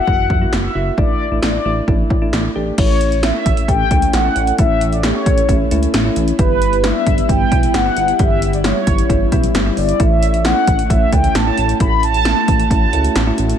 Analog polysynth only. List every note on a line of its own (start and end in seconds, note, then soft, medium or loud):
0.00 0.54 F#5 loud
0.53 0.99 E5 loud
0.98 1.40 D5 loud
1.43 2.06 D5 medium
2.78 3.25 C#5 loud
3.23 3.70 E5 loud
3.68 4.15 G5 loud
4.13 4.55 F#5 loud
4.58 4.93 E5 loud
4.92 5.04 D5 medium
5.04 5.90 C#5 medium
6.39 6.85 B4 loud
6.84 7.31 E5 loud
7.29 7.76 G5 loud
7.74 8.21 F#5 loud
8.20 8.51 E5 loud
8.53 8.58 D5 medium
8.65 9.51 C#5 medium
9.78 10.01 D5 medium
10.00 10.46 E5 medium
10.45 10.92 F#5 loud
10.90 11.11 E5 loud
11.13 11.36 G5 loud
11.35 11.77 A5 loud
11.80 12.04 B5 loud
12.03 12.69 A5 loud
12.71 13.34 A5 loud